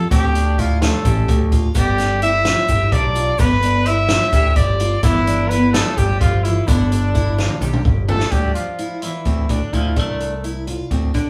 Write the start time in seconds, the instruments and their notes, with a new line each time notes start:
Already playing: trumpet A4
0.11 picked electric bass D2, twelve-string acoustic guitar C4, trumpet G4, kick, closed hi-hat, shaker
0.35 twelve-string acoustic guitar D4, closed hi-hat
0.58 twelve-string acoustic guitar E4, trumpet F4, kick, closed hi-hat
0.82 clean electric guitar A3, twelve-string acoustic guitar F4, trumpet A4, snare, closed hi-hat, shaker
1.05 picked electric bass A1, twelve-string acoustic guitar G4, kick, closed hi-hat, shaker
1.28 picked electric bass D2, kick, closed hi-hat
1.52 twelve-string acoustic guitar F4, kick, closed hi-hat, shaker
1.75 picked electric bass G1, clean electric guitar G3, twelve-string acoustic guitar B3, trumpet G4, kick, closed hi-hat, shaker
1.98 twelve-string acoustic guitar D4, snare, closed hi-hat
2.22 twelve-string acoustic guitar E4, clean electric guitar E4, trumpet E5, closed hi-hat, shaker
2.45 twelve-string acoustic guitar F4, snare, closed hi-hat
2.68 picked electric bass G1, twelve-string acoustic guitar G4, kick, closed hi-hat, shaker
2.92 picked electric bass B1, clean electric guitar D4, trumpet D5, kick, closed hi-hat
3.15 twelve-string acoustic guitar F4, closed hi-hat
3.38 picked electric bass G1, clean electric guitar B3, twelve-string acoustic guitar B3, trumpet B4, kick, closed hi-hat, shaker
3.62 twelve-string acoustic guitar D4, closed hi-hat
3.86 clean electric guitar E4, twelve-string acoustic guitar E4, trumpet E5, closed hi-hat
4.09 twelve-string acoustic guitar F4, snare, closed hi-hat
4.33 picked electric bass D2, twelve-string acoustic guitar G4, kick, closed hi-hat, shaker
4.56 picked electric bass G1, clean electric guitar D4, trumpet D5, kick, closed hi-hat
4.80 twelve-string acoustic guitar F4, closed hi-hat
5.03 picked electric bass G1, clean electric guitar E3, twelve-string acoustic guitar B3, trumpet E4, kick, closed hi-hat, shaker
5.27 twelve-string acoustic guitar D4, closed hi-hat
5.49 clean electric guitar B3, twelve-string acoustic guitar E4, trumpet B4, closed hi-hat, shaker
5.73 clean electric guitar A3, twelve-string acoustic guitar F4, trumpet A4, snare, closed hi-hat
5.97 picked electric bass G1, clean electric guitar G3, trumpet G4, twelve-string acoustic guitar G4, kick, closed hi-hat, shaker
6.21 picked electric bass G1, clean electric guitar F3, trumpet F4, kick, closed hi-hat
6.44 clean electric guitar E3, trumpet E4, twelve-string acoustic guitar F4, closed hi-hat
6.68 picked electric bass G1, clean electric guitar D3, twelve-string acoustic guitar B3, trumpet D4, kick, closed hi-hat, shaker
6.91 twelve-string acoustic guitar D4, closed hi-hat, shaker
7.15 twelve-string acoustic guitar E4, kick, closed hi-hat, shaker
7.38 twelve-string acoustic guitar F4, snare, shaker
7.50 high tom
7.61 picked electric bass B1, twelve-string acoustic guitar G4, shaker
7.74 mid tom
7.85 picked electric bass G1, kick, shaker
8.08 clean electric guitar A3, twelve-string acoustic guitar F4, trumpet A4, floor tom
8.20 snare
8.31 picked electric bass D2, clean electric guitar G3, twelve-string acoustic guitar D4, trumpet G4, kick, closed hi-hat
8.54 clean electric guitar F3, trumpet F4, closed hi-hat
8.78 twelve-string acoustic guitar E4, closed hi-hat
9.02 clean electric guitar E3, trumpet E4, twelve-string acoustic guitar F4, closed hi-hat
9.25 picked electric bass D2, twelve-string acoustic guitar C4, kick, closed hi-hat
9.49 picked electric bass D2, clean electric guitar D3, twelve-string acoustic guitar D4, trumpet D4, kick, closed hi-hat
9.73 picked electric bass D2, clean electric guitar F3, twelve-string acoustic guitar E4, trumpet F4, kick, closed hi-hat
9.96 picked electric bass C2, clean electric guitar A3, twelve-string acoustic guitar D4, trumpet A4, kick, closed hi-hat
10.20 closed hi-hat
10.44 twelve-string acoustic guitar E4, closed hi-hat
10.67 twelve-string acoustic guitar F4, closed hi-hat
10.91 picked electric bass D2, twelve-string acoustic guitar C4, kick, closed hi-hat
11.14 picked electric bass D3, twelve-string acoustic guitar D4, kick, closed hi-hat